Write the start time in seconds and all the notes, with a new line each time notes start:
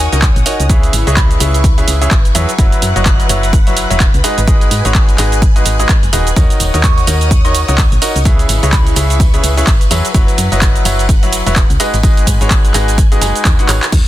Already playing: C#5 F#5 D#6
0.00 G#5
0.12 C#2 D#3 D#4 F#4 A#4 C#5 D#5, closed hi-hat, cabasa
0.22 kick, clap, closed hi-hat, cabasa
0.36 A#1, closed hi-hat, cabasa
0.46 D#4 F#4 A#4 C#5 D#5, open hi-hat, cabasa
0.60 C#2, closed hi-hat, cabasa
0.69 C#3 E4 G#4 B4 C#5 E5 C#6, kick, closed hi-hat, cabasa
0.83 closed hi-hat, cabasa
0.93 G#1, open hi-hat, cabasa
1.07 C#2 C#3 E4 G#4 B4 C#5 D#5, closed hi-hat, cabasa
1.17 B5, kick, clap, closed hi-hat, cabasa
1.31 closed hi-hat, cabasa
1.40 C#2 C#3 E4 G#4 B4 C#5 E5, open hi-hat, cabasa
1.54 closed hi-hat, cabasa
1.64 kick, closed hi-hat, cabasa
1.78 C#3 E4 G#4 B4 C#5 E5, closed hi-hat, cabasa
1.88 C#2, open hi-hat, cabasa
2.01 C#3 E4 G#4 B4 C#5 E5, closed hi-hat, cabasa
2.11 G#1, kick, clap, closed hi-hat, cabasa
2.25 closed hi-hat, cabasa
2.35 E2 F#3 E4 G#4 B4 C#5 E5, open hi-hat, cabasa
2.49 closed hi-hat, cabasa
2.58 F#1 F#3 E4 F#4 B4 C#5 E5 F#5 F#6, kick, closed hi-hat, cabasa
2.72 closed hi-hat, cabasa
2.82 F#2, open hi-hat, cabasa
2.96 F#1 F#3 E4 F#4 B4 C#5 D#5, closed hi-hat, cabasa
3.06 kick, clap, closed hi-hat, cabasa
3.20 closed hi-hat, cabasa
3.29 F#1 F#3 E4 F#4 B4 C#5 E5, open hi-hat, cabasa
3.43 closed hi-hat, cabasa
3.53 kick, closed hi-hat, cabasa
3.67 F#3 E4 F#4 B4 C#5 E5, closed hi-hat, cabasa
3.77 open hi-hat, cabasa
3.90 E1 F#3 E4 F#4 B4 C#5 E5, closed hi-hat, cabasa
4.00 kick, clap, closed hi-hat, cabasa
4.14 C#2, closed hi-hat, cabasa
4.24 G#3 D#4 F#4 G#4 B4 D#5 G#5 F#6, open hi-hat, cabasa
4.38 G#1, closed hi-hat, cabasa
4.47 G#3 D#4 F#4 G#4 B4 D#5, kick, closed hi-hat, cabasa
4.61 closed hi-hat, cabasa
4.71 G#2, open hi-hat, cabasa
4.85 G#1 G#3 D#4 F#4 G#4 B4 C#5, closed hi-hat, cabasa
4.95 kick, clap, closed hi-hat, cabasa
5.09 closed hi-hat, cabasa
5.18 G#1 G#3 D#4 F#4 G#4 B4 D#5, clap, open hi-hat, cabasa
5.32 closed hi-hat, cabasa
5.42 kick, closed hi-hat, cabasa
5.56 G#3 D#4 F#4 G#4 B4 D#5, closed hi-hat, cabasa
5.66 G#1, open hi-hat, cabasa
5.79 G#3 D#4 F#4 G#4 B4 D#5, closed hi-hat, cabasa
5.89 kick, clap, closed hi-hat, cabasa
6.03 F#1, closed hi-hat, cabasa
6.13 D#1 D#3 D#4 F#4 G#4 B4 D#5, open hi-hat, cabasa
6.27 closed hi-hat, cabasa
6.36 D#2 D#3 D#4 F#4 A#4 C#5 D#5 F#5 D#6, kick, closed hi-hat, tambourine, cabasa
6.50 closed hi-hat, tambourine, cabasa
6.60 D#1, open hi-hat, tambourine, cabasa
6.74 D#2 D#3 D#4 F#4 A#4 C#5 D#5, closed hi-hat, tambourine, cabasa
6.83 C#6, kick, clap, closed hi-hat, tambourine, cabasa
6.98 C#6, closed hi-hat, tambourine, cabasa
7.07 D#2 D#3 D#4 F#4 A#4 C#5 D#5, open hi-hat, tambourine, cabasa
7.21 closed hi-hat, tambourine, cabasa
7.31 kick, closed hi-hat, tambourine, cabasa
7.45 D#3 D#4 F#4 A#4 C#5 D#5 C#6, closed hi-hat, tambourine, cabasa
7.55 open hi-hat, tambourine, cabasa
7.68 C#2 D#3 D#4 F#4 A#4 C#5 D#5, closed hi-hat, tambourine, cabasa
7.78 kick, clap, closed hi-hat, tambourine, cabasa
7.92 A#1, closed hi-hat, tambourine, cabasa
8.02 D#4 F#4 A#4 C#5 D#5, open hi-hat, tambourine, cabasa
8.16 C#2, closed hi-hat, tambourine, cabasa
8.25 C#3 E4 G#4 B4 C#5 E5 C#6, kick, closed hi-hat, tambourine, cabasa
8.39 closed hi-hat, tambourine, cabasa
8.49 G#1, open hi-hat, tambourine, cabasa
8.63 C#2 C#3 E4 G#4 B4 C#5 D#5, closed hi-hat, tambourine, cabasa
8.73 B5, kick, clap, closed hi-hat, tambourine, cabasa
8.87 closed hi-hat, tambourine, cabasa
8.96 C#2 C#3 E4 G#4 B4 C#5 E5, open hi-hat, tambourine, cabasa
9.10 closed hi-hat, tambourine, cabasa
9.20 kick, closed hi-hat, tambourine, cabasa
9.33 C#3 E4 G#4 B4 C#5 E5, closed hi-hat, tambourine, cabasa
9.43 C#2, open hi-hat, tambourine, cabasa
9.57 C#3 E4 G#4 B4 C#5 E5, closed hi-hat, tambourine, cabasa
9.67 G#1, kick, clap, closed hi-hat, tambourine, cabasa
9.81 closed hi-hat, tambourine, cabasa
9.91 E2 F#3 E4 G#4 B4 C#5 E5, open hi-hat, tambourine, cabasa
10.05 closed hi-hat, tambourine, cabasa
10.14 F#1 F#3 E4 F#4 B4 C#5 E5 F#5 F#6, kick, closed hi-hat, tambourine, cabasa
10.28 closed hi-hat, tambourine, cabasa
10.38 F#2, open hi-hat, tambourine, cabasa
10.52 F#1 F#3 E4 F#4 B4 C#5 D#5, closed hi-hat, tambourine, cabasa
10.62 kick, clap, closed hi-hat, tambourine, cabasa
10.76 closed hi-hat, tambourine, cabasa
10.85 F#1 F#3 E4 F#4 B4 C#5 E5, open hi-hat, tambourine, cabasa
10.99 closed hi-hat, tambourine, cabasa
11.09 kick, closed hi-hat, tambourine, cabasa
11.23 F#3 E4 F#4 B4 C#5 E5, closed hi-hat, tambourine, cabasa
11.32 open hi-hat, tambourine, cabasa
11.46 E1 F#3 E4 F#4 B4 C#5 E5, closed hi-hat, tambourine, cabasa
11.56 kick, clap, closed hi-hat, tambourine, cabasa
11.70 C#2, closed hi-hat, tambourine, cabasa
11.80 G#3 D#4 F#4 G#4 B4 D#5 G#5 F#6, open hi-hat, tambourine, cabasa
11.94 G#1, closed hi-hat, tambourine, cabasa
12.03 G#3 D#4 F#4 G#4 B4 D#5, kick, closed hi-hat, tambourine, cabasa
12.17 closed hi-hat, tambourine, cabasa
12.27 G#2, kick, open hi-hat, tambourine, cabasa
12.41 G#1 G#3 D#4 F#4 G#4 B4 C#5, closed hi-hat, tambourine, cabasa
12.50 kick, clap, closed hi-hat, tambourine, cabasa
12.64 closed hi-hat, tambourine, cabasa
12.74 G#1 G#3 D#4 F#4 G#4 B4 D#5, clap, open hi-hat, tambourine, cabasa
12.88 closed hi-hat, tambourine, cabasa
12.98 kick, closed hi-hat, tambourine, cabasa
13.12 G#3 D#4 F#4 G#4 B4 D#5, closed hi-hat, tambourine, cabasa
13.21 F#1 G#3 D#4 F#4 G#4 B4 G#5, open hi-hat, tambourine, cabasa
13.35 closed hi-hat, tambourine, cabasa
13.45 D#2, kick, clap, closed hi-hat, tambourine, cabasa
13.59 G#3 D#4 F#4 G#4 B4 F#5, closed hi-hat, tambourine, cabasa
13.68 G#1 D#3 D#4 F#4 G#4 B4 C#5, clap, open hi-hat, tambourine, cabasa
13.83 clap, closed hi-hat, tambourine, cabasa
13.92 D#2, kick, closed hi-hat, crash, tambourine, cabasa